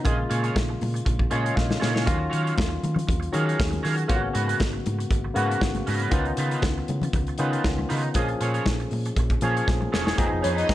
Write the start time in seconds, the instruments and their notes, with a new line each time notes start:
0.04 fingered electric bass A#1, tine electric piano C#3 G#3 A#3 F4, clean electric guitar F4 G#4 D#5, kick, closed hi-hat, muted conga
0.18 muted clean electric guitar stroke
0.30 fingered electric bass A#2, clean electric guitar F4 G#4 C#5, closed hi-hat
0.43 clean electric guitar F4 G#4 C#5, closed hi-hat
0.56 fingered electric bass A#1, muted clean electric guitar stroke, kick, snare, high conga
0.69 muted clean electric guitar stroke
0.81 fingered electric bass A#2, open hi-hat, muted conga
0.94 muted clean electric guitar stroke, closed hi-hat
1.05 fingered electric bass A#1, muted clean electric guitar stroke, kick, closed hi-hat
1.19 muted clean electric guitar stroke, kick
1.31 fingered electric bass A#2, tine electric piano C#3 G#3 A#3 F4 C#5, clean electric guitar F4 G#4 C#5, closed hi-hat, muted conga
1.44 clean electric guitar F4 G#4 C#5, tine electric piano D#5, closed hi-hat
1.56 fingered electric bass A#1, tine electric piano F5, muted clean electric guitar stroke, kick, snare, high conga
1.69 muted clean electric guitar stroke, snare, high conga
1.80 fingered electric bass A#2, clean electric guitar F4 G#4 C#5, snare
1.94 clean electric guitar F4 G#4 C#5, snare
2.05 fingered electric bass D#2, tine electric piano D#3 F#3 C#4 F4, clean electric guitar F#4 C#5 F5, kick, closed hi-hat, muted conga
2.18 muted clean electric guitar stroke
2.30 fingered electric bass D#3, clean electric guitar F#4 C#5 F5, closed hi-hat
2.43 clean electric guitar F#4 C#5 F5, closed hi-hat
2.55 muted clean electric guitar stroke, kick, high conga
2.59 fingered electric bass D#2, snare
2.69 muted clean electric guitar stroke
2.83 fingered electric bass D#3, closed hi-hat, muted conga
2.95 muted clean electric guitar stroke, low conga
2.99 closed hi-hat
3.07 fingered electric bass D#2, muted clean electric guitar stroke, kick, closed hi-hat, low conga
3.20 muted clean electric guitar stroke, closed hi-hat
3.32 tine electric piano D#3 F#3 C#4 G#4, fingered electric bass D#3, clean electric guitar F#4 C#5 F5, closed hi-hat, muted conga
3.46 clean electric guitar F#4 C#5 F5, closed hi-hat
3.60 fingered electric bass D#2, kick, snare, high conga
3.71 muted clean electric guitar stroke, closed hi-hat, high conga
3.83 fingered electric bass D#3, clean electric guitar F#4 C#5 F5, snare, open hi-hat
3.96 muted clean electric guitar stroke, closed hi-hat
4.08 fingered electric bass G#1, tine electric piano C#3 A#3 B3 F4, clean electric guitar C#4 F#4 C#5, kick, closed hi-hat, muted conga
4.16 tine electric piano F#4
4.22 muted clean electric guitar stroke
4.33 fingered electric bass G#2, clean electric guitar C#4 F#4 B4, closed hi-hat
4.48 clean electric guitar C#4 F#4 B4, closed hi-hat
4.60 fingered electric bass G#1, muted clean electric guitar stroke, kick, snare, high conga
4.73 muted clean electric guitar stroke
4.86 fingered electric bass G#2, closed hi-hat, muted conga
4.99 muted clean electric guitar stroke, closed hi-hat
5.11 fingered electric bass G#1, muted clean electric guitar stroke, kick, closed hi-hat
5.24 muted clean electric guitar stroke
5.34 fingered electric bass G#2, tine electric piano C#3 A#3 B3 F#4, clean electric guitar C#4 F#4 B4, closed hi-hat
5.50 clean electric guitar C#4 F#4 B4, closed hi-hat
5.61 fingered electric bass G#1, muted clean electric guitar stroke, kick, snare, high conga
5.75 muted clean electric guitar stroke, closed hi-hat, high conga
5.87 fingered electric bass G#2, clean electric guitar C#4 F#4 B4, open hi-hat
5.99 clean electric guitar C#4 F#4 B4, closed hi-hat
6.10 fingered electric bass C#2, tine electric piano D#3 B3 C#4 F4, clean electric guitar D#4 F4, kick, closed hi-hat, muted conga
6.14 clean electric guitar B4
6.25 muted clean electric guitar stroke, closed hi-hat
6.37 fingered electric bass C#3, clean electric guitar D#4 F4 B4, closed hi-hat
6.51 clean electric guitar D#4 F4 B4, closed hi-hat
6.62 fingered electric bass C#2, muted clean electric guitar stroke, kick, snare, high conga
6.78 muted clean electric guitar stroke
6.88 fingered electric bass C#3, closed hi-hat, muted conga
7.02 muted clean electric guitar stroke, closed hi-hat, low conga
7.13 fingered electric bass C#2, muted clean electric guitar stroke, kick, closed hi-hat, low conga
7.27 muted clean electric guitar stroke, closed hi-hat
7.38 fingered electric bass C#3, tine electric piano D#3 B3 C#4 F4, clean electric guitar D#4 F4 B4, closed hi-hat, muted conga
7.52 clean electric guitar D#4 F4 B4, closed hi-hat
7.64 fingered electric bass C#2, kick, snare, high conga
7.78 muted clean electric guitar stroke, high conga
7.89 fingered electric bass C#3, clean electric guitar D#4 F4 B4, snare, open hi-hat
8.02 muted clean electric guitar stroke, closed hi-hat
8.14 fingered electric bass A#1, tine electric piano F3 A#3 C#4 G#4, clean electric guitar F4 G#4 D#5, kick, closed hi-hat, muted conga
8.28 muted clean electric guitar stroke, closed hi-hat
8.41 fingered electric bass A#2, clean electric guitar F4 G#4 C#5, closed hi-hat
8.54 clean electric guitar F4 G#4 C#5, closed hi-hat
8.66 fingered electric bass A#1, muted clean electric guitar stroke, kick, snare, high conga
8.80 muted clean electric guitar stroke, closed hi-hat
8.91 fingered electric bass A#2, open hi-hat, muted conga
9.05 muted clean electric guitar stroke, closed hi-hat
9.16 fingered electric bass A#1, muted clean electric guitar stroke, kick, closed hi-hat
9.30 muted clean electric guitar stroke, kick, closed hi-hat
9.41 fingered electric bass A#2, tine electric piano F3 A#3 C#4 G#4, clean electric guitar F4 G#4 C#5, closed hi-hat, muted conga, low conga
9.57 clean electric guitar F4 G#4 C#5, closed hi-hat
9.67 fingered electric bass A#1, muted clean electric guitar stroke, kick, snare, high conga
9.81 muted clean electric guitar stroke, high conga
9.92 fingered electric bass E1, clean electric guitar F4 G#4 C#5, snare
10.05 clean electric guitar F4 G#4 C#5, snare, high conga
10.18 fingered electric bass F1, tine electric piano F3 B3 D#4 G#4, clean electric guitar D#4 G#4 B4, kick, closed hi-hat, muted conga
10.31 fingered electric bass F1, muted clean electric guitar stroke
10.42 fingered electric bass F2, string section C#4 C#5, clean electric guitar D#4 G#4 B4, closed hi-hat
10.55 string section D#4 D#5, clean electric guitar D#4 G#4 B4, closed hi-hat
10.68 fingered electric bass F1, tine electric piano F3 B3 D#4 G#4, muted clean electric guitar stroke, kick, snare, high conga